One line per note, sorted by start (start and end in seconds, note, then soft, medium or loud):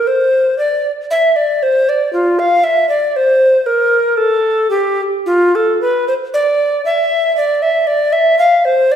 0.07 0.58 C5 medium
0.58 0.92 D5 medium
1.11 1.38 E5 medium
1.36 1.64 D5 medium
1.63 1.91 C5 medium
1.89 2.12 D5 medium
2.13 2.41 F4 medium
2.39 2.65 F5 medium
2.64 2.89 E5 medium
2.89 3.18 D5 medium
3.16 3.68 C5 medium
3.66 4.19 A#4 medium
4.17 4.70 A4 medium
4.70 5.01 G4 medium
5.26 5.57 F4 medium
5.55 5.81 A4 medium
5.81 6.07 B4 medium
6.08 6.14 C5 medium
6.34 6.84 D5 medium
6.85 7.36 E5 medium
7.37 7.64 D5 medium
7.62 7.89 E5 medium
7.87 8.14 D5 medium
8.13 8.38 E5 medium
8.39 8.67 F5 medium
8.65 8.93 C5 medium
8.92 8.96 D5 medium